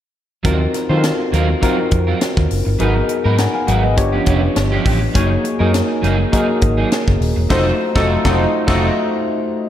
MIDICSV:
0, 0, Header, 1, 7, 480
1, 0, Start_track
1, 0, Tempo, 588235
1, 365, Time_signature, 4, 2, 24, 8
1, 7907, End_track
2, 0, Start_track
2, 0, Title_t, "Horn section"
2, 0, Program_c, 0, 61
2, 6116, Note_on_c, 0, 60, 83
2, 6117, Note_on_c, 0, 69, 85
2, 6117, Note_on_c, 0, 75, 90
2, 6243, Note_off_c, 0, 60, 0
2, 6244, Note_off_c, 0, 69, 0
2, 6244, Note_off_c, 0, 75, 0
2, 6487, Note_on_c, 0, 60, 85
2, 6487, Note_on_c, 0, 75, 89
2, 6488, Note_on_c, 0, 69, 92
2, 6609, Note_off_c, 0, 60, 0
2, 6609, Note_off_c, 0, 75, 0
2, 6610, Note_off_c, 0, 69, 0
2, 6731, Note_on_c, 0, 60, 82
2, 6734, Note_on_c, 0, 69, 83
2, 6735, Note_on_c, 0, 75, 80
2, 6852, Note_off_c, 0, 60, 0
2, 6854, Note_off_c, 0, 69, 0
2, 6854, Note_off_c, 0, 75, 0
2, 7075, Note_on_c, 0, 75, 90
2, 7078, Note_on_c, 0, 69, 100
2, 7080, Note_on_c, 0, 60, 92
2, 7203, Note_off_c, 0, 75, 0
2, 7205, Note_off_c, 0, 69, 0
2, 7206, Note_off_c, 0, 60, 0
2, 7907, End_track
3, 0, Start_track
3, 0, Title_t, "Tine electric piano"
3, 0, Program_c, 1, 4
3, 368, Note_on_c, 1, 60, 86
3, 369, Note_on_c, 1, 63, 77
3, 373, Note_on_c, 1, 65, 78
3, 374, Note_on_c, 1, 66, 74
3, 374, Note_on_c, 1, 70, 91
3, 529, Control_c, 1, 64, 127
3, 631, Note_off_c, 1, 60, 0
3, 631, Note_off_c, 1, 63, 0
3, 633, Note_off_c, 1, 65, 0
3, 634, Note_off_c, 1, 66, 0
3, 634, Note_off_c, 1, 70, 0
3, 732, Note_on_c, 1, 60, 76
3, 735, Note_on_c, 1, 63, 71
3, 737, Note_on_c, 1, 65, 73
3, 740, Note_on_c, 1, 66, 72
3, 744, Note_on_c, 1, 69, 64
3, 788, Note_off_c, 1, 69, 0
3, 795, Note_on_c, 1, 70, 79
3, 1168, Note_off_c, 1, 60, 0
3, 1169, Note_off_c, 1, 63, 0
3, 1170, Note_off_c, 1, 65, 0
3, 1172, Note_off_c, 1, 66, 0
3, 1199, Note_off_c, 1, 70, 0
3, 1326, Note_on_c, 1, 60, 80
3, 1327, Note_on_c, 1, 63, 73
3, 1333, Note_on_c, 1, 65, 75
3, 1335, Note_on_c, 1, 66, 82
3, 1336, Note_on_c, 1, 70, 89
3, 2027, Note_off_c, 1, 60, 0
3, 2028, Note_off_c, 1, 63, 0
3, 2031, Note_off_c, 1, 65, 0
3, 2032, Note_off_c, 1, 66, 0
3, 2033, Note_off_c, 1, 70, 0
3, 2284, Note_on_c, 1, 59, 83
3, 2285, Note_on_c, 1, 63, 73
3, 2287, Note_on_c, 1, 66, 80
3, 2290, Note_on_c, 1, 68, 82
3, 2294, Note_on_c, 1, 70, 90
3, 2295, Control_c, 1, 64, 0
3, 2459, Control_c, 1, 64, 127
3, 2530, Note_off_c, 1, 70, 0
3, 2549, Note_off_c, 1, 59, 0
3, 2549, Note_off_c, 1, 63, 0
3, 2550, Note_off_c, 1, 66, 0
3, 2552, Note_off_c, 1, 68, 0
3, 2658, Note_on_c, 1, 83, 60
3, 2665, Note_on_c, 1, 80, 46
3, 2762, Note_off_c, 1, 83, 0
3, 2763, Note_on_c, 1, 82, 64
3, 2765, Note_off_c, 1, 80, 0
3, 2766, Note_on_c, 1, 78, 49
3, 2887, Note_off_c, 1, 82, 0
3, 2889, Note_off_c, 1, 78, 0
3, 2892, Note_on_c, 1, 80, 68
3, 2896, Note_on_c, 1, 77, 59
3, 2998, Note_off_c, 1, 80, 0
3, 3000, Note_off_c, 1, 77, 0
3, 3001, Note_on_c, 1, 78, 60
3, 3009, Note_on_c, 1, 75, 58
3, 3124, Note_off_c, 1, 75, 0
3, 3126, Note_off_c, 1, 78, 0
3, 3134, Note_on_c, 1, 75, 61
3, 3140, Note_on_c, 1, 71, 55
3, 3236, Note_on_c, 1, 59, 83
3, 3238, Note_on_c, 1, 62, 81
3, 3239, Note_on_c, 1, 65, 79
3, 3244, Note_on_c, 1, 67, 87
3, 3246, Note_on_c, 1, 73, 97
3, 3257, Control_c, 1, 64, 0
3, 3362, Note_off_c, 1, 75, 0
3, 3365, Note_off_c, 1, 71, 0
3, 3377, Control_c, 1, 64, 127
3, 4012, Note_off_c, 1, 59, 0
3, 4013, Note_off_c, 1, 62, 0
3, 4014, Note_off_c, 1, 65, 0
3, 4016, Note_off_c, 1, 67, 0
3, 4017, Note_off_c, 1, 73, 0
3, 4199, Note_on_c, 1, 58, 83
3, 4204, Note_on_c, 1, 66, 76
3, 4205, Note_on_c, 1, 63, 81
3, 4207, Note_on_c, 1, 68, 79
3, 4211, Note_on_c, 1, 73, 96
3, 4214, Control_c, 1, 64, 0
3, 4341, Control_c, 1, 64, 127
3, 4466, Note_off_c, 1, 58, 0
3, 4469, Note_off_c, 1, 63, 0
3, 4469, Note_off_c, 1, 66, 0
3, 4470, Note_off_c, 1, 68, 0
3, 4472, Note_off_c, 1, 73, 0
3, 4568, Note_on_c, 1, 58, 71
3, 4570, Note_on_c, 1, 63, 76
3, 4575, Note_on_c, 1, 66, 72
3, 4577, Note_on_c, 1, 68, 69
3, 4579, Note_on_c, 1, 70, 85
3, 5005, Note_off_c, 1, 58, 0
3, 5006, Note_off_c, 1, 63, 0
3, 5009, Note_off_c, 1, 66, 0
3, 5010, Note_off_c, 1, 68, 0
3, 5011, Note_off_c, 1, 70, 0
3, 5159, Note_on_c, 1, 58, 84
3, 5160, Note_on_c, 1, 63, 81
3, 5161, Note_on_c, 1, 66, 82
3, 5163, Note_on_c, 1, 68, 78
3, 5167, Note_on_c, 1, 70, 85
3, 5863, Note_off_c, 1, 58, 0
3, 5864, Note_off_c, 1, 63, 0
3, 5864, Note_off_c, 1, 66, 0
3, 5865, Note_off_c, 1, 68, 0
3, 5867, Note_off_c, 1, 70, 0
3, 6118, Note_on_c, 1, 57, 96
3, 6119, Note_on_c, 1, 63, 105
3, 6123, Note_on_c, 1, 65, 102
3, 6126, Note_on_c, 1, 66, 102
3, 6130, Note_on_c, 1, 72, 100
3, 6135, Control_c, 1, 64, 0
3, 6260, Control_c, 1, 64, 127
3, 6287, Note_off_c, 1, 57, 0
3, 6288, Note_off_c, 1, 63, 0
3, 6290, Note_off_c, 1, 65, 0
3, 6291, Note_off_c, 1, 66, 0
3, 6294, Note_off_c, 1, 72, 0
3, 6491, Note_on_c, 1, 57, 96
3, 6495, Note_on_c, 1, 63, 94
3, 6497, Note_on_c, 1, 65, 97
3, 6500, Note_on_c, 1, 66, 92
3, 6500, Note_on_c, 1, 69, 90
3, 6652, Note_off_c, 1, 57, 0
3, 6654, Note_off_c, 1, 63, 0
3, 6655, Note_off_c, 1, 65, 0
3, 6657, Note_off_c, 1, 66, 0
3, 6657, Note_off_c, 1, 69, 0
3, 6728, Note_on_c, 1, 57, 92
3, 6733, Note_on_c, 1, 63, 90
3, 6736, Note_on_c, 1, 65, 93
3, 6737, Note_on_c, 1, 66, 89
3, 6793, Note_on_c, 1, 75, 97
3, 6890, Note_off_c, 1, 57, 0
3, 6893, Note_off_c, 1, 63, 0
3, 6895, Note_off_c, 1, 65, 0
3, 6895, Note_off_c, 1, 66, 0
3, 6928, Note_off_c, 1, 75, 0
3, 7078, Note_on_c, 1, 57, 105
3, 7080, Note_on_c, 1, 63, 92
3, 7081, Note_on_c, 1, 65, 103
3, 7087, Note_on_c, 1, 66, 97
3, 7140, Note_on_c, 1, 75, 88
3, 7247, Note_off_c, 1, 57, 0
3, 7248, Note_off_c, 1, 63, 0
3, 7249, Note_off_c, 1, 65, 0
3, 7252, Note_off_c, 1, 66, 0
3, 7282, Note_off_c, 1, 75, 0
3, 7907, End_track
4, 0, Start_track
4, 0, Title_t, "Clean electric guitar"
4, 0, Program_c, 2, 27
4, 353, Note_on_c, 2, 54, 78
4, 357, Note_on_c, 2, 60, 75
4, 362, Note_on_c, 2, 65, 88
4, 366, Note_on_c, 2, 70, 77
4, 480, Note_off_c, 2, 70, 0
4, 487, Note_off_c, 2, 54, 0
4, 487, Note_off_c, 2, 65, 0
4, 489, Note_off_c, 2, 60, 0
4, 730, Note_on_c, 2, 72, 63
4, 735, Note_on_c, 2, 65, 58
4, 739, Note_on_c, 2, 60, 49
4, 742, Note_on_c, 2, 54, 53
4, 817, Note_off_c, 2, 72, 0
4, 820, Note_off_c, 2, 65, 0
4, 822, Note_off_c, 2, 60, 0
4, 824, Note_off_c, 2, 54, 0
4, 1078, Note_on_c, 2, 54, 70
4, 1086, Note_on_c, 2, 60, 86
4, 1091, Note_on_c, 2, 65, 83
4, 1097, Note_on_c, 2, 70, 90
4, 1195, Note_off_c, 2, 70, 0
4, 1204, Note_off_c, 2, 65, 0
4, 1206, Note_off_c, 2, 60, 0
4, 1209, Note_off_c, 2, 54, 0
4, 1314, Note_on_c, 2, 54, 82
4, 1321, Note_on_c, 2, 60, 82
4, 1323, Note_on_c, 2, 65, 78
4, 1331, Note_on_c, 2, 70, 90
4, 1438, Note_off_c, 2, 70, 0
4, 1445, Note_off_c, 2, 65, 0
4, 1448, Note_off_c, 2, 54, 0
4, 1451, Note_off_c, 2, 60, 0
4, 1689, Note_on_c, 2, 70, 58
4, 1695, Note_on_c, 2, 65, 57
4, 1698, Note_on_c, 2, 60, 54
4, 1703, Note_on_c, 2, 54, 46
4, 1777, Note_off_c, 2, 70, 0
4, 1780, Note_off_c, 2, 65, 0
4, 1781, Note_off_c, 2, 60, 0
4, 1784, Note_off_c, 2, 54, 0
4, 2275, Note_on_c, 2, 54, 67
4, 2280, Note_on_c, 2, 59, 75
4, 2285, Note_on_c, 2, 63, 74
4, 2289, Note_on_c, 2, 71, 75
4, 2406, Note_off_c, 2, 63, 0
4, 2407, Note_off_c, 2, 71, 0
4, 2408, Note_off_c, 2, 54, 0
4, 2410, Note_off_c, 2, 59, 0
4, 2648, Note_on_c, 2, 70, 67
4, 2655, Note_on_c, 2, 63, 59
4, 2658, Note_on_c, 2, 59, 51
4, 2662, Note_on_c, 2, 54, 45
4, 2737, Note_off_c, 2, 70, 0
4, 2740, Note_off_c, 2, 63, 0
4, 2742, Note_off_c, 2, 59, 0
4, 2744, Note_off_c, 2, 54, 0
4, 2997, Note_on_c, 2, 54, 76
4, 3003, Note_on_c, 2, 59, 72
4, 3008, Note_on_c, 2, 63, 78
4, 3010, Note_on_c, 2, 70, 78
4, 3117, Note_off_c, 2, 70, 0
4, 3125, Note_off_c, 2, 63, 0
4, 3129, Note_off_c, 2, 54, 0
4, 3130, Note_off_c, 2, 59, 0
4, 3367, Note_on_c, 2, 67, 48
4, 3370, Note_on_c, 2, 61, 49
4, 3375, Note_on_c, 2, 59, 42
4, 3382, Note_on_c, 2, 53, 42
4, 3456, Note_off_c, 2, 67, 0
4, 3457, Note_off_c, 2, 61, 0
4, 3460, Note_off_c, 2, 59, 0
4, 3461, Note_off_c, 2, 53, 0
4, 3471, Note_on_c, 2, 53, 85
4, 3476, Note_on_c, 2, 59, 77
4, 3483, Note_on_c, 2, 61, 85
4, 3488, Note_on_c, 2, 67, 93
4, 3595, Note_off_c, 2, 67, 0
4, 3602, Note_off_c, 2, 61, 0
4, 3606, Note_off_c, 2, 53, 0
4, 3606, Note_off_c, 2, 59, 0
4, 3850, Note_on_c, 2, 67, 99
4, 3856, Note_on_c, 2, 61, 75
4, 3859, Note_on_c, 2, 59, 70
4, 3866, Note_on_c, 2, 53, 72
4, 3946, Note_off_c, 2, 53, 0
4, 3955, Note_off_c, 2, 59, 0
4, 3956, Note_on_c, 2, 53, 61
4, 3959, Note_off_c, 2, 61, 0
4, 3961, Note_off_c, 2, 67, 0
4, 3965, Note_on_c, 2, 59, 59
4, 3969, Note_on_c, 2, 61, 67
4, 3973, Note_on_c, 2, 67, 70
4, 4060, Note_off_c, 2, 53, 0
4, 4065, Note_off_c, 2, 59, 0
4, 4067, Note_off_c, 2, 61, 0
4, 4069, Note_off_c, 2, 67, 0
4, 4191, Note_on_c, 2, 54, 81
4, 4199, Note_on_c, 2, 58, 72
4, 4202, Note_on_c, 2, 63, 74
4, 4209, Note_on_c, 2, 68, 79
4, 4314, Note_off_c, 2, 68, 0
4, 4319, Note_off_c, 2, 63, 0
4, 4323, Note_off_c, 2, 58, 0
4, 4326, Note_off_c, 2, 54, 0
4, 4563, Note_on_c, 2, 70, 61
4, 4569, Note_on_c, 2, 63, 59
4, 4574, Note_on_c, 2, 58, 53
4, 4577, Note_on_c, 2, 54, 51
4, 4654, Note_off_c, 2, 70, 0
4, 4657, Note_off_c, 2, 63, 0
4, 4659, Note_off_c, 2, 58, 0
4, 4661, Note_off_c, 2, 54, 0
4, 4911, Note_on_c, 2, 54, 77
4, 4917, Note_on_c, 2, 58, 84
4, 4922, Note_on_c, 2, 63, 97
4, 4925, Note_on_c, 2, 68, 90
4, 5035, Note_off_c, 2, 68, 0
4, 5042, Note_off_c, 2, 63, 0
4, 5044, Note_off_c, 2, 58, 0
4, 5046, Note_off_c, 2, 54, 0
4, 5159, Note_on_c, 2, 54, 67
4, 5164, Note_on_c, 2, 58, 77
4, 5167, Note_on_c, 2, 63, 70
4, 5171, Note_on_c, 2, 68, 73
4, 5280, Note_off_c, 2, 68, 0
4, 5284, Note_off_c, 2, 63, 0
4, 5289, Note_off_c, 2, 54, 0
4, 5292, Note_off_c, 2, 58, 0
4, 5528, Note_on_c, 2, 68, 67
4, 5532, Note_on_c, 2, 63, 58
4, 5538, Note_on_c, 2, 58, 61
4, 5543, Note_on_c, 2, 54, 49
4, 5616, Note_off_c, 2, 68, 0
4, 5618, Note_off_c, 2, 63, 0
4, 5621, Note_off_c, 2, 58, 0
4, 5623, Note_off_c, 2, 54, 0
4, 6119, Note_on_c, 2, 54, 94
4, 6123, Note_on_c, 2, 60, 88
4, 6127, Note_on_c, 2, 63, 96
4, 6132, Note_on_c, 2, 72, 90
4, 6288, Note_off_c, 2, 54, 0
4, 6290, Note_off_c, 2, 60, 0
4, 6292, Note_off_c, 2, 63, 0
4, 6295, Note_off_c, 2, 72, 0
4, 6489, Note_on_c, 2, 69, 99
4, 6493, Note_on_c, 2, 63, 96
4, 6498, Note_on_c, 2, 60, 96
4, 6504, Note_on_c, 2, 54, 93
4, 6651, Note_off_c, 2, 69, 0
4, 6653, Note_off_c, 2, 63, 0
4, 6656, Note_off_c, 2, 60, 0
4, 6659, Note_off_c, 2, 54, 0
4, 6731, Note_on_c, 2, 54, 91
4, 6736, Note_on_c, 2, 60, 93
4, 6741, Note_on_c, 2, 63, 92
4, 6743, Note_on_c, 2, 69, 91
4, 6892, Note_off_c, 2, 54, 0
4, 6895, Note_off_c, 2, 60, 0
4, 6898, Note_off_c, 2, 63, 0
4, 6899, Note_off_c, 2, 69, 0
4, 7075, Note_on_c, 2, 69, 81
4, 7081, Note_on_c, 2, 63, 85
4, 7085, Note_on_c, 2, 60, 88
4, 7092, Note_on_c, 2, 54, 83
4, 7245, Note_off_c, 2, 69, 0
4, 7249, Note_off_c, 2, 63, 0
4, 7251, Note_off_c, 2, 60, 0
4, 7255, Note_off_c, 2, 54, 0
4, 7907, End_track
5, 0, Start_track
5, 0, Title_t, "Fingered electric bass"
5, 0, Program_c, 3, 33
5, 365, Note_on_c, 3, 39, 99
5, 531, Note_off_c, 3, 39, 0
5, 731, Note_on_c, 3, 51, 81
5, 898, Note_off_c, 3, 51, 0
5, 1084, Note_on_c, 3, 39, 83
5, 1250, Note_off_c, 3, 39, 0
5, 1567, Note_on_c, 3, 41, 96
5, 1732, Note_off_c, 3, 41, 0
5, 1935, Note_on_c, 3, 39, 83
5, 2011, Note_off_c, 3, 39, 0
5, 2048, Note_on_c, 3, 30, 78
5, 2136, Note_off_c, 3, 30, 0
5, 2174, Note_on_c, 3, 31, 78
5, 2251, Note_off_c, 3, 31, 0
5, 2284, Note_on_c, 3, 32, 92
5, 2451, Note_off_c, 3, 32, 0
5, 2654, Note_on_c, 3, 44, 84
5, 2820, Note_off_c, 3, 44, 0
5, 3003, Note_on_c, 3, 32, 91
5, 3246, Note_off_c, 3, 32, 0
5, 3246, Note_on_c, 3, 31, 102
5, 3412, Note_off_c, 3, 31, 0
5, 3484, Note_on_c, 3, 29, 87
5, 3650, Note_off_c, 3, 29, 0
5, 3722, Note_on_c, 3, 31, 84
5, 3889, Note_off_c, 3, 31, 0
5, 3964, Note_on_c, 3, 33, 81
5, 4130, Note_off_c, 3, 33, 0
5, 4206, Note_on_c, 3, 30, 104
5, 4371, Note_off_c, 3, 30, 0
5, 4571, Note_on_c, 3, 42, 87
5, 4738, Note_off_c, 3, 42, 0
5, 4921, Note_on_c, 3, 30, 84
5, 5088, Note_off_c, 3, 30, 0
5, 5405, Note_on_c, 3, 32, 85
5, 5571, Note_off_c, 3, 32, 0
5, 5775, Note_on_c, 3, 30, 85
5, 5850, Note_off_c, 3, 30, 0
5, 5882, Note_on_c, 3, 27, 97
5, 5972, Note_off_c, 3, 27, 0
5, 6012, Note_on_c, 3, 28, 88
5, 6089, Note_off_c, 3, 28, 0
5, 6494, Note_on_c, 3, 29, 93
5, 6653, Note_off_c, 3, 29, 0
5, 6730, Note_on_c, 3, 29, 97
5, 6892, Note_off_c, 3, 29, 0
5, 7083, Note_on_c, 3, 29, 94
5, 7250, Note_off_c, 3, 29, 0
5, 7907, End_track
6, 0, Start_track
6, 0, Title_t, "Muted clean electric guitar strokes"
6, 490, Note_on_c, 9, 29, 35
6, 572, Note_off_c, 9, 29, 0
6, 600, Note_on_c, 9, 29, 40
6, 681, Note_off_c, 9, 29, 0
6, 841, Note_on_c, 9, 29, 41
6, 923, Note_off_c, 9, 29, 0
6, 972, Note_on_c, 9, 29, 40
6, 1054, Note_off_c, 9, 29, 0
6, 1205, Note_on_c, 9, 29, 53
6, 1287, Note_off_c, 9, 29, 0
6, 1448, Note_on_c, 9, 29, 30
6, 1529, Note_off_c, 9, 29, 0
6, 1560, Note_on_c, 9, 29, 37
6, 1642, Note_off_c, 9, 29, 0
6, 1801, Note_on_c, 9, 29, 32
6, 1883, Note_off_c, 9, 29, 0
6, 1933, Note_on_c, 9, 29, 50
6, 2015, Note_off_c, 9, 29, 0
6, 2165, Note_on_c, 9, 29, 41
6, 2247, Note_off_c, 9, 29, 0
6, 2410, Note_on_c, 9, 29, 44
6, 2492, Note_off_c, 9, 29, 0
6, 2514, Note_on_c, 9, 29, 47
6, 2596, Note_off_c, 9, 29, 0
6, 2758, Note_on_c, 9, 29, 45
6, 2839, Note_off_c, 9, 29, 0
6, 2884, Note_on_c, 9, 29, 42
6, 2966, Note_off_c, 9, 29, 0
6, 3127, Note_on_c, 9, 29, 41
6, 3209, Note_off_c, 9, 29, 0
6, 3234, Note_on_c, 9, 29, 40
6, 3315, Note_off_c, 9, 29, 0
6, 3605, Note_on_c, 9, 29, 40
6, 3686, Note_off_c, 9, 29, 0
6, 3717, Note_on_c, 9, 29, 37
6, 3799, Note_off_c, 9, 29, 0
6, 4090, Note_on_c, 9, 29, 47
6, 4172, Note_off_c, 9, 29, 0
6, 4324, Note_on_c, 9, 29, 45
6, 4405, Note_off_c, 9, 29, 0
6, 4434, Note_on_c, 9, 29, 44
6, 4516, Note_off_c, 9, 29, 0
6, 4673, Note_on_c, 9, 29, 40
6, 4755, Note_off_c, 9, 29, 0
6, 4802, Note_on_c, 9, 29, 50
6, 4883, Note_off_c, 9, 29, 0
6, 5045, Note_on_c, 9, 29, 50
6, 5126, Note_off_c, 9, 29, 0
6, 5290, Note_on_c, 9, 29, 38
6, 5371, Note_off_c, 9, 29, 0
6, 5398, Note_on_c, 9, 29, 46
6, 5479, Note_off_c, 9, 29, 0
6, 5766, Note_on_c, 9, 29, 39
6, 5847, Note_off_c, 9, 29, 0
6, 6008, Note_on_c, 9, 29, 52
6, 6089, Note_off_c, 9, 29, 0
6, 7907, End_track
7, 0, Start_track
7, 0, Title_t, "Drums"
7, 366, Note_on_c, 9, 36, 105
7, 366, Note_on_c, 9, 42, 72
7, 447, Note_off_c, 9, 36, 0
7, 448, Note_off_c, 9, 42, 0
7, 605, Note_on_c, 9, 42, 68
7, 609, Note_on_c, 9, 38, 33
7, 687, Note_off_c, 9, 42, 0
7, 691, Note_off_c, 9, 38, 0
7, 845, Note_on_c, 9, 42, 92
7, 847, Note_on_c, 9, 38, 111
7, 926, Note_off_c, 9, 42, 0
7, 929, Note_off_c, 9, 38, 0
7, 1089, Note_on_c, 9, 42, 76
7, 1170, Note_off_c, 9, 42, 0
7, 1328, Note_on_c, 9, 36, 77
7, 1329, Note_on_c, 9, 42, 91
7, 1409, Note_off_c, 9, 36, 0
7, 1410, Note_off_c, 9, 42, 0
7, 1560, Note_on_c, 9, 42, 59
7, 1565, Note_on_c, 9, 36, 89
7, 1642, Note_off_c, 9, 42, 0
7, 1647, Note_off_c, 9, 36, 0
7, 1804, Note_on_c, 9, 42, 90
7, 1808, Note_on_c, 9, 38, 101
7, 1885, Note_off_c, 9, 42, 0
7, 1890, Note_off_c, 9, 38, 0
7, 1935, Note_on_c, 9, 36, 84
7, 1936, Note_on_c, 9, 38, 35
7, 2017, Note_off_c, 9, 36, 0
7, 2017, Note_off_c, 9, 38, 0
7, 2045, Note_on_c, 9, 46, 66
7, 2127, Note_off_c, 9, 46, 0
7, 2282, Note_on_c, 9, 42, 82
7, 2364, Note_off_c, 9, 42, 0
7, 2521, Note_on_c, 9, 42, 65
7, 2602, Note_off_c, 9, 42, 0
7, 2761, Note_on_c, 9, 42, 99
7, 2763, Note_on_c, 9, 38, 90
7, 2842, Note_off_c, 9, 42, 0
7, 2845, Note_off_c, 9, 38, 0
7, 3002, Note_on_c, 9, 42, 77
7, 3084, Note_off_c, 9, 42, 0
7, 3242, Note_on_c, 9, 42, 90
7, 3245, Note_on_c, 9, 36, 85
7, 3324, Note_off_c, 9, 42, 0
7, 3327, Note_off_c, 9, 36, 0
7, 3477, Note_on_c, 9, 42, 60
7, 3484, Note_on_c, 9, 36, 86
7, 3559, Note_off_c, 9, 42, 0
7, 3565, Note_off_c, 9, 36, 0
7, 3721, Note_on_c, 9, 42, 85
7, 3725, Note_on_c, 9, 38, 110
7, 3802, Note_off_c, 9, 42, 0
7, 3807, Note_off_c, 9, 38, 0
7, 3963, Note_on_c, 9, 36, 85
7, 3965, Note_on_c, 9, 46, 63
7, 4045, Note_off_c, 9, 36, 0
7, 4047, Note_off_c, 9, 46, 0
7, 4204, Note_on_c, 9, 36, 108
7, 4204, Note_on_c, 9, 42, 84
7, 4285, Note_off_c, 9, 36, 0
7, 4285, Note_off_c, 9, 42, 0
7, 4445, Note_on_c, 9, 42, 66
7, 4526, Note_off_c, 9, 42, 0
7, 4684, Note_on_c, 9, 42, 97
7, 4687, Note_on_c, 9, 38, 96
7, 4766, Note_off_c, 9, 42, 0
7, 4769, Note_off_c, 9, 38, 0
7, 4929, Note_on_c, 9, 42, 72
7, 5010, Note_off_c, 9, 42, 0
7, 5166, Note_on_c, 9, 36, 88
7, 5167, Note_on_c, 9, 42, 100
7, 5248, Note_off_c, 9, 36, 0
7, 5249, Note_off_c, 9, 42, 0
7, 5398, Note_on_c, 9, 42, 62
7, 5403, Note_on_c, 9, 36, 91
7, 5479, Note_off_c, 9, 42, 0
7, 5485, Note_off_c, 9, 36, 0
7, 5644, Note_on_c, 9, 42, 86
7, 5648, Note_on_c, 9, 38, 101
7, 5726, Note_off_c, 9, 42, 0
7, 5730, Note_off_c, 9, 38, 0
7, 5775, Note_on_c, 9, 36, 84
7, 5776, Note_on_c, 9, 38, 33
7, 5856, Note_off_c, 9, 36, 0
7, 5858, Note_off_c, 9, 38, 0
7, 5888, Note_on_c, 9, 46, 70
7, 5970, Note_off_c, 9, 46, 0
7, 6122, Note_on_c, 9, 49, 82
7, 6123, Note_on_c, 9, 36, 98
7, 6127, Note_on_c, 9, 38, 110
7, 6204, Note_off_c, 9, 36, 0
7, 6204, Note_off_c, 9, 49, 0
7, 6209, Note_off_c, 9, 38, 0
7, 6492, Note_on_c, 9, 36, 94
7, 6497, Note_on_c, 9, 38, 99
7, 6574, Note_off_c, 9, 36, 0
7, 6578, Note_off_c, 9, 38, 0
7, 6732, Note_on_c, 9, 36, 105
7, 6737, Note_on_c, 9, 38, 109
7, 6814, Note_off_c, 9, 36, 0
7, 6819, Note_off_c, 9, 38, 0
7, 7082, Note_on_c, 9, 36, 100
7, 7083, Note_on_c, 9, 49, 77
7, 7088, Note_on_c, 9, 38, 97
7, 7164, Note_off_c, 9, 36, 0
7, 7164, Note_off_c, 9, 49, 0
7, 7169, Note_off_c, 9, 38, 0
7, 7907, End_track
0, 0, End_of_file